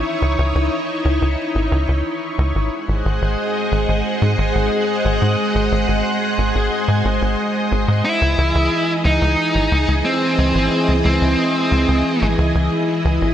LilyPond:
<<
  \new Staff \with { instrumentName = "String machine" } { \time 4/4 \key cis \minor \tempo 4 = 90 <dis' e' cis''>1 | <gis gis' bis' dis'' fis''>1~ | <gis gis' bis' dis'' fis''>1 | <e gis' dis''>1~ |
<e gis' dis''>1 | }
  \new Staff \with { instrumentName = "Lead electric guitar" } { \time 4/4 \key cis \minor r1 | r1 | r1 | e'4. dis'4. bis4~ |
bis8 bis2 r4. | }
  \new Staff \with { instrumentName = "Analog synth bass" } { \clef bass \time 4/4 \key cis \minor r16 cis,16 cis,16 cis,16 r8 cis,16 cis,16 r16 gis,,16 cis,16 cis,16 r8 cis,16 gis,,16 | r16 gis,,16 gis,,16 gis,,16 r8 gis,,16 gis,,16 r16 gis,16 gis,,16 gis,,16 r8 gis,,16 gis,16 | r16 gis,,16 gis,,16 gis,,16 r8 gis,,16 gis,,16 r16 gis,16 gis,,16 gis,,16 r8 gis,,16 gis,16 | r16 cis,16 cis,16 cis,16 r8 cis,16 cis,16 r16 gis,,16 cis,16 cis,16 r8 cis,16 gis,,16 |
r16 cis,16 cis,16 cis,16 r8 cis,16 cis,16 r16 gis,,16 cis,16 cis,16 r8 cis,16 gis,,16 | }
>>